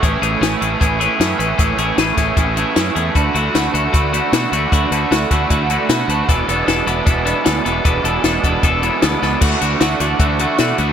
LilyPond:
<<
  \new Staff \with { instrumentName = "Harmonium" } { \time 4/4 \key d \lydian \tempo 4 = 154 r1 | r1 | r1 | r1 |
r1 | r1 | <e' d'' fis''>1 | }
  \new Staff \with { instrumentName = "Clean electric guitar" } { \time 4/4 \key d \lydian <e a cis' gis'>8 <e a cis' gis'>8 <e a cis' gis'>8 <e a cis' gis'>8 <e a cis' gis'>8 <e a cis' gis'>8 <e a cis' gis'>8 <e a cis' gis'>8 | <e a cis' gis'>8 <e a cis' gis'>8 <e a cis' gis'>8 <e a cis' gis'>8 <e a cis' gis'>8 <e a cis' gis'>8 <e a cis' gis'>8 <e a cis' gis'>8 | <e a e' fis'>8 <e a e' fis'>8 <e a e' fis'>8 <e a e' fis'>8 <e a e' fis'>8 <e a e' fis'>8 <e a e' fis'>8 <e a e' fis'>8 | <e a e' fis'>8 <e a e' fis'>8 <e a e' fis'>8 <e a e' fis'>8 <e a e' fis'>8 <e a e' fis'>8 <e a e' fis'>8 <e a e' fis'>8 |
<e b d' a'>8 <e b d' a'>8 <e b d' a'>8 <e b d' a'>8 <e b d' a'>8 <e b d' a'>8 <e b d' a'>8 <e b d' a'>8 | <e b d' a'>8 <e b d' a'>8 <e b d' a'>8 <e b d' a'>8 <e b d' a'>8 <e b d' a'>8 <e b d' a'>8 <e b d' a'>8 | <e a d' fis'>8 <e a d' fis'>8 <e a d' fis'>8 <e a d' fis'>8 <e a d' fis'>8 <e a d' fis'>8 <e a d' fis'>8 <e a d' fis'>8 | }
  \new Staff \with { instrumentName = "Overdriven electric guitar" } { \time 4/4 \key d \lydian <a, e a cis' e'>8 <a, e a cis' e'>8 <a, e a cis' e'>8 <a, e a cis' e'>8 <a, e a cis' e'>8 <a, e a cis' e'>8 <a, e a cis' e'>8 <a, e a cis' e'>8 | <a, e a cis' e'>8 <a, e a cis' e'>8 <a, e a cis' e'>8 <a, e a cis' e'>8 <a, e a cis' e'>8 <a, e a cis' e'>8 <a, e a cis' e'>8 <a, e a cis' e'>8 | <d a d' fis'>8 <d a d' fis'>8 <d a d' fis'>8 <d a d' fis'>8 <d a d' fis'>8 <d a d' fis'>8 <d a d' fis'>8 <d a d' fis'>8 | <d a d' fis'>8 <d a d' fis'>8 <d a d' fis'>8 <d a d' fis'>8 <d a d' fis'>8 <d a d' fis'>8 <d a d' fis'>8 <d a d' fis'>8 |
<e, b, e gis d' e'>8 <e, b, e gis d' e'>8 <e, b, e gis d' e'>8 <e, b, e gis d' e'>8 <e, b, e gis d' e'>8 <e, b, e gis d' e'>8 <e, b, e gis d' e'>8 <e, b, e gis d' e'>8 | <e, b, e gis d' e'>8 <e, b, e gis d' e'>8 <e, b, e gis d' e'>8 <e, b, e gis d' e'>8 <e, b, e gis d' e'>8 <e, b, e gis d' e'>8 <e, b, e gis d' e'>8 <e, b, e gis d' e'>8 | <d a d' fis'>8 <d a d' fis'>8 <d a d' fis'>8 <d a d' fis'>8 <d a d' fis'>8 <d a d' fis'>8 <d a d' fis'>8 <d a d' fis'>8 | }
  \new Staff \with { instrumentName = "Fingered electric bass" } { \clef bass \time 4/4 \key d \lydian a,,8 a,,8 a,,8 a,,8 a,,4 fis,8 a,,8 | a,,8 a,,8 a,,8 a,,8 a,,4 fis,8 e,8 | d,8 d,8 d,8 d,8 d,4 b,8 d,8 | d,8 d,8 d,8 d,8 d,4 b,8 d,8 |
e,,8 e,,8 e,,8 e,,8 e,,4 d,8 e,,8 | e,,8 e,,8 e,,8 e,,8 e,,4 d,8 cis,8 | d,8 d,8 d,8 d,8 d,4 b,8 d,8 | }
  \new DrumStaff \with { instrumentName = "Drums" } \drummode { \time 4/4 <hh bd>8 hh8 <hh sn>8 hh8 <hh bd>8 hh8 <hh sn>8 hh8 | <hh bd>8 hh8 <hh sn>8 <hh bd sn>8 <hh bd>8 hh8 <hh sn>8 hh8 | <hh bd>8 hh8 <hh sn>8 hh8 <hh bd>8 hh8 <hh sn>8 hh8 | <hh bd>8 hh8 <hh sn>8 <hh bd>8 <hh bd>8 hh8 <hh sn>8 hh8 |
<hh bd>8 hh8 <hh sn>8 hh8 <hh bd>8 hh8 <hh sn>8 hh8 | <hh bd>8 hh8 <hh sn>8 <hh bd>8 <hh bd>8 hh8 <hh sn>8 sn8 | <cymc bd>8 hh8 <hh sn>8 <hh sn>8 <hh bd>8 hh8 <hh sn>8 hh8 | }
>>